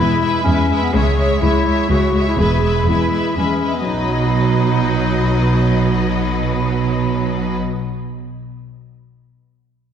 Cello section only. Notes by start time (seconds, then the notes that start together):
Already playing: E2
0.46 E2
0.94 C#2
1.42 C#2
1.90 C#2
2.39 E2
2.88 E2
3.37 E2
3.87 B2